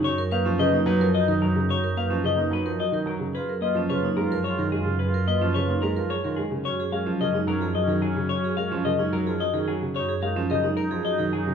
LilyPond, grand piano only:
\new Staff \with { instrumentName = "Grand piano" } { \clef bass \time 3/4 \key dis \minor \tempo 4 = 109 r8 ais16 eis16 cis16 ais16 fis16 eis16 r16 dis16 fis16 cis16 | r8 ais16 eis16 cis16 ais16 fis16 eis16 r16 dis16 fis16 cis16 | r8 ais16 eis16 cis16 ais16 gis16 eis16 r16 dis16 gis16 cis16 | r8 ais16 eis16 cis16 ais16 gis16 eis16 r16 dis16 gis16 cis16 |
r8 gis16 eis16 cis16 gis16 fis16 eis16 r16 dis16 fis16 cis16 | r8 gis16 eis16 cis16 gis16 fis16 eis16 r16 dis16 fis16 cis16 | r8 gis16 eis16 cis16 gis16 r16 eis16 r16 dis16 fis16 cis16 | }